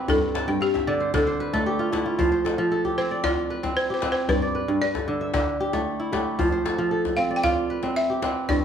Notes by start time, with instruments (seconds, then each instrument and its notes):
Already playing: kora F3 C4 F4 G4 B4, balafon C5
0.08 kora G2, balafon A4, djembe tone, djembe bass
0.23 djembe slap
0.35 kora A5, djembe slap
0.48 kora G2 G5
0.61 balafon G4, kora F5
0.74 kora E5, djembe slap, djembe tone
0.87 kora D3 D5
1.00 kora C5
1.14 kora D3 D5, balafon A4, djembe slap, djembe bass
1.27 kora C5, djembe slap
1.40 kora B4
1.53 kora A3 A4, djembe slap, djembe tone
1.66 kora G4
1.79 kora F4, djembe slap
1.92 kora A3 E4, djembe slap
2.06 kora F4, djembe slap
2.19 kora F3 C5, djembe tone, djembe bass
2.32 kora C5, djembe slap
2.45 kora A4, djembe slap
2.58 kora F3
2.72 kora A4
2.85 kora G4, djembe tone
2.98 kora C4, balafon C5
3.11 kora D5
3.24 kora F4, balafon D5, djembe slap, djembe bass
3.38 djembe slap
3.50 kora B4
3.63 kora C4, djembe slap, djembe tone
3.77 balafon C5
3.90 kora G4, balafon C5, djembe slap
4.02 kora C4 B4, djembe slap
4.12 balafon C5, djembe slap
4.29 kora G2 D5, balafon B4, djembe slap, djembe tone, djembe bass
4.42 kora D5, djembe slap
4.55 kora B4
4.68 kora G2
4.81 kora B4, balafon D5
4.95 kora A4, djembe slap, djembe tone
5.08 kora D3
5.21 kora E5, djembe slap
5.34 kora D3, balafon D5, djembe slap, djembe bass
5.60 kora G4
5.73 kora A3, djembe slap, djembe tone
5.87 djembe slap
6.00 kora E4
6.12 kora A3 G4, djembe slap
6.26 djembe slap
6.39 kora F3 C5, djembe tone, djembe bass
6.52 kora C5, djembe slap
6.65 kora A4, djembe slap
6.78 kora F3
6.91 kora A4
7.05 djembe slap, djembe tone
7.17 kora C4, balafon F5
7.30 kora D5
7.36 balafon G5
7.44 kora F4, balafon F5, djembe slap, djembe bass
7.57 djembe slap
7.70 kora B4
7.83 kora C4, djembe slap
7.96 balafon E5
8.10 kora G4, djembe slap
8.22 kora C4 B4, djembe slap
8.36 djembe slap
8.49 kora G2, balafon D5, djembe tone, djembe bass